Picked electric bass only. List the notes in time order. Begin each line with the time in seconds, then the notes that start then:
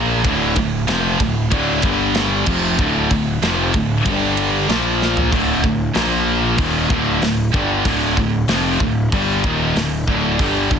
Already playing: A#1
0.25 D1
0.57 D1
0.89 F1
1.20 D1
1.51 D1
1.83 G1
2.47 F1
2.79 D1
3.11 D1
3.42 F1
3.74 D1
4.05 G1
4.69 A#1
5.32 D1
5.63 D1
5.95 A#1
6.58 D#1
6.90 D1
7.22 D1
7.54 G1
7.85 D1
8.17 D1
8.47 F1
8.80 D1
9.12 G1
9.44 D#1
9.75 D1
10.07 D1
10.39 G1
10.71 G1